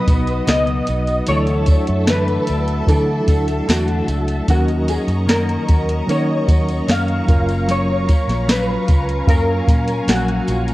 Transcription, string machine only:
0.00 1.25 B3 medium
0.00 1.24 D#5 medium
0.00 1.25 D#6 medium
1.27 4.44 A4 medium
1.27 4.45 E5 medium
1.27 4.45 A5 loud
4.48 7.25 D#5 medium
4.48 10.74 A#5 medium
4.48 10.74 C#6 medium
7.29 10.74 F5 medium
8.88 10.74 G#5 medium

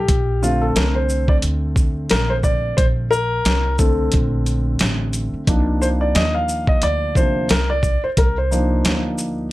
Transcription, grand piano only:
0.00 0.44 G4 medium
0.42 3.08 D3 medium
0.42 3.08 A3 soft
0.42 3.08 C4 medium
0.42 0.62 F4 medium
0.61 0.76 A4 medium
0.76 0.96 A#4 medium
0.95 1.30 C5 medium
1.29 1.36 D5 medium
2.10 2.30 A#4 medium
2.30 2.35 C5 loud
2.44 2.79 D5 medium
2.77 2.85 C5 medium
3.11 3.75 A#4 loud
3.78 5.43 D3 medium
3.78 5.44 A3 soft
3.78 5.44 C4 medium
3.78 4.10 A4 medium
5.47 7.15 F3 soft
5.47 7.15 A#3 medium
5.47 7.16 D4 medium
5.47 8.13 D#4 medium
5.82 5.87 C5 medium
6.01 6.16 D5 medium
6.15 6.33 D#5 loud
6.34 6.66 F5 medium
6.68 6.82 D#5 medium
6.83 7.14 D5 loud
7.16 7.47 C3 soft
7.16 7.47 F3 soft
7.16 7.47 A#3 soft
7.16 7.47 D4 soft
7.16 7.48 C5 medium
7.50 7.68 A#4 medium
7.70 8.01 D5 medium
8.04 8.09 C5 medium
8.18 8.36 A#4 medium
8.38 9.01 C5 medium
8.51 9.48 F3 soft
8.51 9.49 A#3 medium
8.51 9.49 D4 medium
8.51 9.48 D#4 medium

